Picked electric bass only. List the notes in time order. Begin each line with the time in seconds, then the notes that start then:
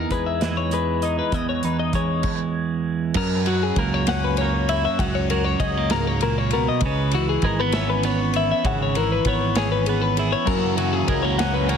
0.10 E2
1.32 E2
1.64 E2
1.93 E2
3.15 F#2
3.76 C#2
4.99 C#2
5.60 C#2
6.81 C#2
7.43 G#1
8.64 G#1
9.25 G#1
10.48 F#2
11.08 C#2